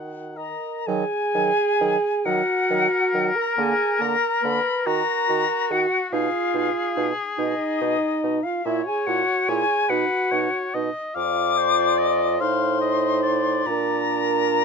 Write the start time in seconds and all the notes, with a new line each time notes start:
Already playing: D#3 F#4 F#5
0.37 A#4 D#5 A#5
0.87 D#3 F#3 G#4 G#5
1.35 D#3 F#3
1.81 D#3 F#3
2.25 D#3 F#3 F#4 A#4 F#5
2.70 D#3 F#3
3.14 D#3 F#3
3.35 A#4 A#5
3.57 D3 A#3 G#4 G#5
4.00 D3 A#3 A#4 A#5
4.42 D3 A#3 B4 B5
4.86 D#3 F#4 A#4 A#5
5.28 D#3 F#4
5.71 D#3 F#4 F#5
6.11 B2 D#4 F4 G#4 F5
6.54 B2 D#4
6.96 B2 D#4
7.38 B2 D#4 D#5
7.81 B2 D#4
8.23 B2 D#4
8.43 F4 F5
8.65 A#2 E4 C#5 E5
8.86 G#4 G#5
9.07 A#2 E4 F#4 F#5
9.48 A#2 E4 G#4 G#5
9.88 B2 D#4 F#4 B4 F#5
10.31 B2 D#4 C#5
10.74 B2 D#4 D#5
11.15 F2 F4 D5 F5 D6
11.57 C5
11.98 D#5
12.39 A2 D#4 C5 F5 C6
12.81 D#5
13.23 D5
13.66 A#2 D4 A#4 A#5